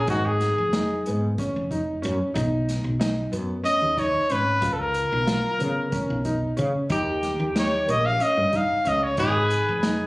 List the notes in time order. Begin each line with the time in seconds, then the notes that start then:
0.07 G#1 D#4 F#4, kick, closed hi-hat
0.26 G#4
0.41 snare, closed hi-hat
0.58 F1
0.73 D#4, snare, closed hi-hat
1.06 G#2 B3, closed hi-hat
1.38 C#4, kick, closed hi-hat
1.56 F1
1.71 D#4, kick, closed hi-hat
2.02 F#2 C#4, closed hi-hat
2.34 B1 D#4, kick, closed hi-hat
2.69 snare, closed hi-hat
2.84 B1
3.00 D#4, snare, closed hi-hat
3.32 F#2 B3, closed hi-hat
3.64 C#4 D#5, closed hi-hat
3.82 D#2
3.97 D#4 C#5, kick, closed hi-hat
4.29 G#1 C#4 B4, closed hi-hat
4.61 C#2 F4, kick, closed hi-hat
4.73 A4
4.80 A#4
4.94 closed hi-hat
5.12 B1
5.27 F4, snare, closed hi-hat
5.58 C#3 B3, closed hi-hat
5.92 C#4, kick, closed hi-hat
6.10 B1
6.25 D#4, kick, closed hi-hat
6.57 C#3 C#4, closed hi-hat
6.90 D#2 D#4 G4, kick, closed hi-hat
7.23 snare, closed hi-hat
7.40 D#2
7.55 D#4 C#5, snare, closed hi-hat
7.87 A#1 A#3 D#5, closed hi-hat
8.06 F5
8.20 C#4 D#5, closed hi-hat
8.37 G2
8.53 D#4 F5, kick, closed hi-hat
8.85 C#2 C#4 D#5, closed hi-hat
9.03 C#5
9.17 G#1 D#4 G#4 B4, kick, closed hi-hat
9.50 closed hi-hat
9.69 F1
9.83 D#4, snare, closed hi-hat